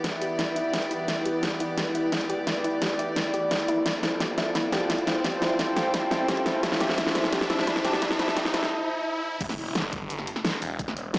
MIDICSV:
0, 0, Header, 1, 9, 480
1, 0, Start_track
1, 0, Tempo, 346821
1, 1499, Time_signature, 4, 2, 24, 8
1, 15483, End_track
2, 0, Start_track
2, 0, Title_t, "Ambient pad"
2, 0, Program_c, 0, 92
2, 0, Note_on_c, 0, 64, 91
2, 0, Note_on_c, 0, 71, 81
2, 0, Note_on_c, 0, 76, 85
2, 2105, Note_on_c, 0, 74, 86
2, 2248, Note_off_c, 0, 76, 0
2, 5337, Note_off_c, 0, 64, 0
2, 5338, Note_off_c, 0, 71, 0
2, 5338, Note_on_c, 0, 65, 86
2, 6232, Note_on_c, 0, 72, 81
2, 6249, Note_on_c, 0, 79, 77
2, 6808, Note_off_c, 0, 74, 0
2, 9660, Note_on_c, 0, 81, 76
2, 9803, Note_off_c, 0, 79, 0
2, 12058, Note_off_c, 0, 65, 0
2, 12058, Note_off_c, 0, 72, 0
2, 12058, Note_off_c, 0, 81, 0
2, 15483, End_track
3, 0, Start_track
3, 0, Title_t, "String section"
3, 0, Program_c, 1, 48
3, 0, Note_on_c, 1, 52, 82
3, 0, Note_on_c, 1, 59, 76
3, 0, Note_on_c, 1, 67, 75
3, 0, Note_on_c, 1, 74, 88
3, 5283, Note_off_c, 1, 52, 0
3, 5283, Note_off_c, 1, 59, 0
3, 5283, Note_off_c, 1, 67, 0
3, 5283, Note_off_c, 1, 74, 0
3, 5337, Note_on_c, 1, 53, 81
3, 5337, Note_on_c, 1, 60, 74
3, 5337, Note_on_c, 1, 69, 75
3, 5337, Note_on_c, 1, 74, 91
3, 9139, Note_off_c, 1, 74, 0
3, 9177, Note_on_c, 1, 76, 96
3, 12962, Note_off_c, 1, 60, 0
3, 12962, Note_off_c, 1, 69, 0
3, 12963, Note_off_c, 1, 53, 0
3, 12979, Note_off_c, 1, 76, 0
3, 15483, End_track
4, 0, Start_track
4, 0, Title_t, "Synth pluck"
4, 0, Program_c, 2, 84
4, 57, Note_on_c, 2, 64, 100
4, 234, Note_off_c, 2, 64, 0
4, 297, Note_on_c, 2, 67, 100
4, 415, Note_off_c, 2, 67, 0
4, 538, Note_on_c, 2, 64, 105
4, 608, Note_off_c, 2, 64, 0
4, 778, Note_on_c, 2, 64, 100
4, 954, Note_off_c, 2, 64, 0
4, 1018, Note_on_c, 2, 67, 107
4, 1135, Note_off_c, 2, 67, 0
4, 1258, Note_on_c, 2, 64, 105
4, 1329, Note_off_c, 2, 64, 0
4, 1498, Note_on_c, 2, 64, 102
4, 1674, Note_off_c, 2, 64, 0
4, 1738, Note_on_c, 2, 67, 100
4, 1856, Note_off_c, 2, 67, 0
4, 1978, Note_on_c, 2, 64, 99
4, 2049, Note_off_c, 2, 64, 0
4, 2219, Note_on_c, 2, 64, 98
4, 2394, Note_off_c, 2, 64, 0
4, 2458, Note_on_c, 2, 67, 102
4, 2575, Note_off_c, 2, 67, 0
4, 2698, Note_on_c, 2, 64, 100
4, 2769, Note_off_c, 2, 64, 0
4, 2938, Note_on_c, 2, 64, 102
4, 3114, Note_off_c, 2, 64, 0
4, 3178, Note_on_c, 2, 67, 105
4, 3295, Note_off_c, 2, 67, 0
4, 3418, Note_on_c, 2, 64, 100
4, 3488, Note_off_c, 2, 64, 0
4, 3658, Note_on_c, 2, 64, 107
4, 3834, Note_off_c, 2, 64, 0
4, 3898, Note_on_c, 2, 67, 102
4, 4015, Note_off_c, 2, 67, 0
4, 4138, Note_on_c, 2, 64, 100
4, 4209, Note_off_c, 2, 64, 0
4, 4379, Note_on_c, 2, 64, 105
4, 4554, Note_off_c, 2, 64, 0
4, 4618, Note_on_c, 2, 67, 100
4, 4735, Note_off_c, 2, 67, 0
4, 4859, Note_on_c, 2, 64, 104
4, 4929, Note_off_c, 2, 64, 0
4, 5099, Note_on_c, 2, 64, 105
4, 5274, Note_off_c, 2, 64, 0
4, 5339, Note_on_c, 2, 64, 100
4, 5409, Note_off_c, 2, 64, 0
4, 5578, Note_on_c, 2, 64, 105
4, 5754, Note_off_c, 2, 64, 0
4, 5818, Note_on_c, 2, 67, 101
4, 5936, Note_off_c, 2, 67, 0
4, 6058, Note_on_c, 2, 64, 101
4, 6128, Note_off_c, 2, 64, 0
4, 6298, Note_on_c, 2, 64, 106
4, 6474, Note_off_c, 2, 64, 0
4, 6538, Note_on_c, 2, 67, 96
4, 6655, Note_off_c, 2, 67, 0
4, 6778, Note_on_c, 2, 64, 104
4, 6849, Note_off_c, 2, 64, 0
4, 7018, Note_on_c, 2, 64, 106
4, 7194, Note_off_c, 2, 64, 0
4, 7258, Note_on_c, 2, 67, 102
4, 7375, Note_off_c, 2, 67, 0
4, 7498, Note_on_c, 2, 64, 105
4, 7569, Note_off_c, 2, 64, 0
4, 7738, Note_on_c, 2, 64, 99
4, 7914, Note_off_c, 2, 64, 0
4, 7978, Note_on_c, 2, 67, 100
4, 8095, Note_off_c, 2, 67, 0
4, 8218, Note_on_c, 2, 64, 107
4, 8288, Note_off_c, 2, 64, 0
4, 8458, Note_on_c, 2, 64, 103
4, 8634, Note_off_c, 2, 64, 0
4, 8697, Note_on_c, 2, 67, 102
4, 8815, Note_off_c, 2, 67, 0
4, 8938, Note_on_c, 2, 64, 108
4, 9009, Note_off_c, 2, 64, 0
4, 9178, Note_on_c, 2, 64, 106
4, 9354, Note_off_c, 2, 64, 0
4, 9418, Note_on_c, 2, 67, 104
4, 9536, Note_off_c, 2, 67, 0
4, 9658, Note_on_c, 2, 64, 99
4, 9729, Note_off_c, 2, 64, 0
4, 9899, Note_on_c, 2, 64, 98
4, 10074, Note_off_c, 2, 64, 0
4, 10138, Note_on_c, 2, 67, 105
4, 10256, Note_off_c, 2, 67, 0
4, 10378, Note_on_c, 2, 64, 100
4, 10449, Note_off_c, 2, 64, 0
4, 10619, Note_on_c, 2, 64, 106
4, 10794, Note_off_c, 2, 64, 0
4, 10859, Note_on_c, 2, 67, 108
4, 10976, Note_off_c, 2, 67, 0
4, 11099, Note_on_c, 2, 64, 103
4, 11169, Note_off_c, 2, 64, 0
4, 11339, Note_on_c, 2, 64, 104
4, 11515, Note_off_c, 2, 64, 0
4, 11579, Note_on_c, 2, 67, 101
4, 11696, Note_off_c, 2, 67, 0
4, 11818, Note_on_c, 2, 64, 99
4, 11889, Note_off_c, 2, 64, 0
4, 15483, End_track
5, 0, Start_track
5, 0, Title_t, "Detuned saw bass"
5, 0, Program_c, 3, 39
5, 13019, Note_on_c, 3, 28, 96
5, 13479, Note_off_c, 3, 28, 0
5, 13498, Note_on_c, 3, 31, 96
5, 14199, Note_off_c, 3, 31, 0
5, 14698, Note_on_c, 3, 28, 95
5, 15399, Note_off_c, 3, 28, 0
5, 15418, Note_on_c, 3, 28, 93
5, 15483, Note_off_c, 3, 28, 0
5, 15483, End_track
6, 0, Start_track
6, 0, Title_t, "Impact"
6, 0, Program_c, 4, 103
6, 13018, Note_on_c, 4, 60, 79
6, 14938, Note_off_c, 4, 60, 0
6, 15483, End_track
7, 0, Start_track
7, 0, Title_t, "Riser"
7, 0, Program_c, 5, 103
7, 0, Note_on_c, 5, 60, 81
7, 13018, Note_off_c, 5, 60, 0
7, 15483, End_track
8, 0, Start_track
8, 0, Title_t, "Swell"
8, 0, Program_c, 6, 103
8, 12058, Note_on_c, 6, 60, 77
8, 13018, Note_off_c, 6, 60, 0
8, 15483, End_track
9, 0, Start_track
9, 0, Title_t, "Drums"
9, 57, Note_on_c, 9, 38, 52
9, 57, Note_on_c, 9, 42, 91
9, 58, Note_on_c, 9, 36, 96
9, 196, Note_off_c, 9, 38, 0
9, 196, Note_off_c, 9, 42, 0
9, 197, Note_off_c, 9, 36, 0
9, 298, Note_on_c, 9, 42, 67
9, 436, Note_off_c, 9, 42, 0
9, 537, Note_on_c, 9, 38, 55
9, 537, Note_on_c, 9, 42, 91
9, 538, Note_on_c, 9, 36, 100
9, 676, Note_off_c, 9, 36, 0
9, 676, Note_off_c, 9, 38, 0
9, 676, Note_off_c, 9, 42, 0
9, 778, Note_on_c, 9, 42, 65
9, 916, Note_off_c, 9, 42, 0
9, 1018, Note_on_c, 9, 36, 99
9, 1018, Note_on_c, 9, 38, 55
9, 1018, Note_on_c, 9, 42, 88
9, 1138, Note_off_c, 9, 42, 0
9, 1138, Note_on_c, 9, 42, 36
9, 1156, Note_off_c, 9, 38, 0
9, 1157, Note_off_c, 9, 36, 0
9, 1258, Note_off_c, 9, 42, 0
9, 1258, Note_on_c, 9, 42, 64
9, 1396, Note_off_c, 9, 42, 0
9, 1498, Note_on_c, 9, 36, 98
9, 1498, Note_on_c, 9, 38, 58
9, 1498, Note_on_c, 9, 42, 90
9, 1636, Note_off_c, 9, 38, 0
9, 1636, Note_off_c, 9, 42, 0
9, 1637, Note_off_c, 9, 36, 0
9, 1737, Note_on_c, 9, 42, 65
9, 1876, Note_off_c, 9, 42, 0
9, 1977, Note_on_c, 9, 38, 59
9, 1977, Note_on_c, 9, 42, 87
9, 1978, Note_on_c, 9, 36, 99
9, 2116, Note_off_c, 9, 38, 0
9, 2116, Note_off_c, 9, 42, 0
9, 2117, Note_off_c, 9, 36, 0
9, 2217, Note_on_c, 9, 42, 65
9, 2356, Note_off_c, 9, 42, 0
9, 2457, Note_on_c, 9, 38, 60
9, 2457, Note_on_c, 9, 42, 90
9, 2458, Note_on_c, 9, 36, 97
9, 2596, Note_off_c, 9, 38, 0
9, 2596, Note_off_c, 9, 42, 0
9, 2597, Note_off_c, 9, 36, 0
9, 2698, Note_on_c, 9, 42, 63
9, 2836, Note_off_c, 9, 42, 0
9, 2938, Note_on_c, 9, 38, 61
9, 2938, Note_on_c, 9, 42, 86
9, 2939, Note_on_c, 9, 36, 99
9, 3058, Note_off_c, 9, 42, 0
9, 3058, Note_on_c, 9, 42, 36
9, 3076, Note_off_c, 9, 38, 0
9, 3077, Note_off_c, 9, 36, 0
9, 3178, Note_off_c, 9, 42, 0
9, 3178, Note_on_c, 9, 42, 64
9, 3316, Note_off_c, 9, 42, 0
9, 3418, Note_on_c, 9, 36, 96
9, 3418, Note_on_c, 9, 38, 64
9, 3418, Note_on_c, 9, 42, 88
9, 3557, Note_off_c, 9, 36, 0
9, 3557, Note_off_c, 9, 38, 0
9, 3557, Note_off_c, 9, 42, 0
9, 3658, Note_on_c, 9, 42, 63
9, 3797, Note_off_c, 9, 42, 0
9, 3898, Note_on_c, 9, 36, 94
9, 3898, Note_on_c, 9, 38, 66
9, 3898, Note_on_c, 9, 42, 85
9, 4037, Note_off_c, 9, 36, 0
9, 4037, Note_off_c, 9, 38, 0
9, 4037, Note_off_c, 9, 42, 0
9, 4138, Note_on_c, 9, 42, 63
9, 4277, Note_off_c, 9, 42, 0
9, 4378, Note_on_c, 9, 38, 68
9, 4378, Note_on_c, 9, 42, 86
9, 4379, Note_on_c, 9, 36, 101
9, 4517, Note_off_c, 9, 36, 0
9, 4517, Note_off_c, 9, 38, 0
9, 4517, Note_off_c, 9, 42, 0
9, 4618, Note_on_c, 9, 42, 60
9, 4757, Note_off_c, 9, 42, 0
9, 4858, Note_on_c, 9, 36, 100
9, 4858, Note_on_c, 9, 38, 69
9, 4858, Note_on_c, 9, 42, 87
9, 4978, Note_off_c, 9, 42, 0
9, 4978, Note_on_c, 9, 42, 34
9, 4997, Note_off_c, 9, 36, 0
9, 4997, Note_off_c, 9, 38, 0
9, 5098, Note_off_c, 9, 42, 0
9, 5098, Note_on_c, 9, 42, 62
9, 5236, Note_off_c, 9, 42, 0
9, 5338, Note_on_c, 9, 36, 103
9, 5338, Note_on_c, 9, 38, 71
9, 5338, Note_on_c, 9, 42, 90
9, 5476, Note_off_c, 9, 38, 0
9, 5476, Note_off_c, 9, 42, 0
9, 5477, Note_off_c, 9, 36, 0
9, 5578, Note_on_c, 9, 38, 75
9, 5578, Note_on_c, 9, 42, 65
9, 5717, Note_off_c, 9, 38, 0
9, 5717, Note_off_c, 9, 42, 0
9, 5818, Note_on_c, 9, 36, 100
9, 5818, Note_on_c, 9, 38, 75
9, 5818, Note_on_c, 9, 42, 88
9, 5957, Note_off_c, 9, 36, 0
9, 5957, Note_off_c, 9, 38, 0
9, 5957, Note_off_c, 9, 42, 0
9, 6058, Note_on_c, 9, 38, 79
9, 6058, Note_on_c, 9, 42, 63
9, 6197, Note_off_c, 9, 38, 0
9, 6197, Note_off_c, 9, 42, 0
9, 6298, Note_on_c, 9, 36, 98
9, 6298, Note_on_c, 9, 38, 78
9, 6298, Note_on_c, 9, 42, 84
9, 6437, Note_off_c, 9, 36, 0
9, 6437, Note_off_c, 9, 38, 0
9, 6437, Note_off_c, 9, 42, 0
9, 6538, Note_on_c, 9, 38, 81
9, 6538, Note_on_c, 9, 42, 63
9, 6677, Note_off_c, 9, 38, 0
9, 6677, Note_off_c, 9, 42, 0
9, 6778, Note_on_c, 9, 36, 101
9, 6778, Note_on_c, 9, 38, 76
9, 6778, Note_on_c, 9, 42, 86
9, 6899, Note_off_c, 9, 42, 0
9, 6899, Note_on_c, 9, 42, 35
9, 6917, Note_off_c, 9, 36, 0
9, 6917, Note_off_c, 9, 38, 0
9, 7019, Note_off_c, 9, 42, 0
9, 7019, Note_on_c, 9, 38, 85
9, 7019, Note_on_c, 9, 42, 63
9, 7157, Note_off_c, 9, 38, 0
9, 7157, Note_off_c, 9, 42, 0
9, 7258, Note_on_c, 9, 36, 103
9, 7259, Note_on_c, 9, 38, 84
9, 7259, Note_on_c, 9, 42, 91
9, 7397, Note_off_c, 9, 36, 0
9, 7397, Note_off_c, 9, 38, 0
9, 7397, Note_off_c, 9, 42, 0
9, 7499, Note_on_c, 9, 38, 83
9, 7499, Note_on_c, 9, 42, 65
9, 7638, Note_off_c, 9, 38, 0
9, 7638, Note_off_c, 9, 42, 0
9, 7738, Note_on_c, 9, 36, 97
9, 7739, Note_on_c, 9, 38, 82
9, 7739, Note_on_c, 9, 42, 92
9, 7877, Note_off_c, 9, 36, 0
9, 7877, Note_off_c, 9, 38, 0
9, 7877, Note_off_c, 9, 42, 0
9, 7979, Note_on_c, 9, 38, 88
9, 7979, Note_on_c, 9, 42, 68
9, 8117, Note_off_c, 9, 38, 0
9, 8117, Note_off_c, 9, 42, 0
9, 8218, Note_on_c, 9, 36, 100
9, 8219, Note_on_c, 9, 38, 85
9, 8219, Note_on_c, 9, 42, 92
9, 8357, Note_off_c, 9, 36, 0
9, 8357, Note_off_c, 9, 38, 0
9, 8357, Note_off_c, 9, 42, 0
9, 8458, Note_on_c, 9, 38, 85
9, 8458, Note_on_c, 9, 42, 66
9, 8596, Note_off_c, 9, 38, 0
9, 8596, Note_off_c, 9, 42, 0
9, 8698, Note_on_c, 9, 36, 98
9, 8698, Note_on_c, 9, 38, 85
9, 8698, Note_on_c, 9, 42, 90
9, 8819, Note_off_c, 9, 42, 0
9, 8819, Note_on_c, 9, 42, 37
9, 8837, Note_off_c, 9, 36, 0
9, 8837, Note_off_c, 9, 38, 0
9, 8939, Note_off_c, 9, 42, 0
9, 8939, Note_on_c, 9, 38, 92
9, 8939, Note_on_c, 9, 42, 67
9, 9077, Note_off_c, 9, 38, 0
9, 9077, Note_off_c, 9, 42, 0
9, 9178, Note_on_c, 9, 36, 104
9, 9179, Note_on_c, 9, 38, 90
9, 9179, Note_on_c, 9, 42, 95
9, 9299, Note_off_c, 9, 38, 0
9, 9299, Note_on_c, 9, 38, 84
9, 9317, Note_off_c, 9, 36, 0
9, 9317, Note_off_c, 9, 42, 0
9, 9418, Note_off_c, 9, 38, 0
9, 9418, Note_on_c, 9, 38, 92
9, 9418, Note_on_c, 9, 42, 69
9, 9538, Note_off_c, 9, 38, 0
9, 9538, Note_on_c, 9, 38, 84
9, 9557, Note_off_c, 9, 42, 0
9, 9658, Note_off_c, 9, 38, 0
9, 9658, Note_on_c, 9, 38, 94
9, 9658, Note_on_c, 9, 42, 93
9, 9659, Note_on_c, 9, 36, 98
9, 9778, Note_off_c, 9, 38, 0
9, 9778, Note_on_c, 9, 38, 83
9, 9797, Note_off_c, 9, 36, 0
9, 9797, Note_off_c, 9, 42, 0
9, 9899, Note_off_c, 9, 38, 0
9, 9899, Note_on_c, 9, 38, 97
9, 9899, Note_on_c, 9, 42, 70
9, 10019, Note_off_c, 9, 38, 0
9, 10019, Note_on_c, 9, 38, 85
9, 10037, Note_off_c, 9, 42, 0
9, 10138, Note_off_c, 9, 38, 0
9, 10138, Note_on_c, 9, 36, 98
9, 10138, Note_on_c, 9, 38, 99
9, 10138, Note_on_c, 9, 42, 92
9, 10258, Note_off_c, 9, 38, 0
9, 10258, Note_on_c, 9, 38, 89
9, 10277, Note_off_c, 9, 36, 0
9, 10277, Note_off_c, 9, 42, 0
9, 10378, Note_off_c, 9, 38, 0
9, 10378, Note_on_c, 9, 38, 98
9, 10378, Note_on_c, 9, 42, 66
9, 10499, Note_off_c, 9, 38, 0
9, 10499, Note_on_c, 9, 38, 84
9, 10517, Note_off_c, 9, 42, 0
9, 10619, Note_off_c, 9, 38, 0
9, 10619, Note_on_c, 9, 36, 105
9, 10619, Note_on_c, 9, 38, 96
9, 10619, Note_on_c, 9, 42, 93
9, 10739, Note_off_c, 9, 38, 0
9, 10739, Note_off_c, 9, 42, 0
9, 10739, Note_on_c, 9, 38, 85
9, 10739, Note_on_c, 9, 42, 38
9, 10757, Note_off_c, 9, 36, 0
9, 10859, Note_off_c, 9, 38, 0
9, 10859, Note_off_c, 9, 42, 0
9, 10859, Note_on_c, 9, 38, 100
9, 10859, Note_on_c, 9, 42, 67
9, 10978, Note_off_c, 9, 38, 0
9, 10978, Note_on_c, 9, 38, 92
9, 10997, Note_off_c, 9, 42, 0
9, 11098, Note_off_c, 9, 38, 0
9, 11098, Note_on_c, 9, 38, 101
9, 11098, Note_on_c, 9, 42, 101
9, 11099, Note_on_c, 9, 36, 102
9, 11218, Note_off_c, 9, 38, 0
9, 11218, Note_on_c, 9, 38, 93
9, 11237, Note_off_c, 9, 36, 0
9, 11237, Note_off_c, 9, 42, 0
9, 11338, Note_off_c, 9, 38, 0
9, 11338, Note_on_c, 9, 38, 103
9, 11338, Note_on_c, 9, 42, 71
9, 11458, Note_off_c, 9, 38, 0
9, 11458, Note_on_c, 9, 38, 96
9, 11476, Note_off_c, 9, 42, 0
9, 11578, Note_off_c, 9, 38, 0
9, 11578, Note_on_c, 9, 38, 105
9, 11578, Note_on_c, 9, 42, 102
9, 11579, Note_on_c, 9, 36, 96
9, 11698, Note_off_c, 9, 38, 0
9, 11698, Note_on_c, 9, 38, 91
9, 11716, Note_off_c, 9, 42, 0
9, 11717, Note_off_c, 9, 36, 0
9, 11818, Note_off_c, 9, 38, 0
9, 11818, Note_on_c, 9, 38, 109
9, 11818, Note_on_c, 9, 42, 71
9, 11938, Note_off_c, 9, 38, 0
9, 11938, Note_on_c, 9, 38, 97
9, 11956, Note_off_c, 9, 42, 0
9, 12077, Note_off_c, 9, 38, 0
9, 13018, Note_on_c, 9, 42, 83
9, 13018, Note_on_c, 9, 49, 103
9, 13019, Note_on_c, 9, 36, 122
9, 13138, Note_on_c, 9, 40, 52
9, 13157, Note_off_c, 9, 36, 0
9, 13157, Note_off_c, 9, 42, 0
9, 13157, Note_off_c, 9, 49, 0
9, 13258, Note_on_c, 9, 42, 96
9, 13277, Note_off_c, 9, 40, 0
9, 13396, Note_off_c, 9, 42, 0
9, 13498, Note_on_c, 9, 38, 117
9, 13498, Note_on_c, 9, 42, 80
9, 13636, Note_off_c, 9, 38, 0
9, 13636, Note_off_c, 9, 42, 0
9, 13738, Note_on_c, 9, 36, 104
9, 13739, Note_on_c, 9, 42, 98
9, 13877, Note_off_c, 9, 36, 0
9, 13877, Note_off_c, 9, 42, 0
9, 13979, Note_on_c, 9, 42, 84
9, 14098, Note_on_c, 9, 40, 39
9, 14117, Note_off_c, 9, 42, 0
9, 14218, Note_on_c, 9, 42, 98
9, 14237, Note_off_c, 9, 40, 0
9, 14338, Note_on_c, 9, 40, 38
9, 14356, Note_off_c, 9, 42, 0
9, 14457, Note_on_c, 9, 38, 117
9, 14457, Note_on_c, 9, 42, 78
9, 14476, Note_off_c, 9, 40, 0
9, 14596, Note_off_c, 9, 38, 0
9, 14596, Note_off_c, 9, 42, 0
9, 14697, Note_on_c, 9, 46, 78
9, 14836, Note_off_c, 9, 46, 0
9, 14937, Note_on_c, 9, 42, 81
9, 14938, Note_on_c, 9, 36, 127
9, 15057, Note_on_c, 9, 40, 54
9, 15076, Note_off_c, 9, 42, 0
9, 15077, Note_off_c, 9, 36, 0
9, 15178, Note_on_c, 9, 42, 94
9, 15196, Note_off_c, 9, 40, 0
9, 15316, Note_off_c, 9, 42, 0
9, 15418, Note_on_c, 9, 38, 126
9, 15418, Note_on_c, 9, 42, 80
9, 15483, Note_off_c, 9, 38, 0
9, 15483, Note_off_c, 9, 42, 0
9, 15483, End_track
0, 0, End_of_file